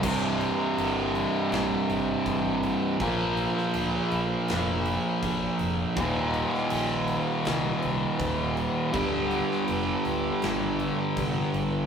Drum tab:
CC |x-x-x-x-x-x-x-x-|x-x-x-x-x-x-x-x-|x-x-x-x-x-x-x-x-|x-x-x-x-x-x-x-x-|
SD |--------o-------|---o----o-------|---o----o-------|---o----o-------|
BD |o-----------o---|o-----------o---|o-----------o---|o-----------o---|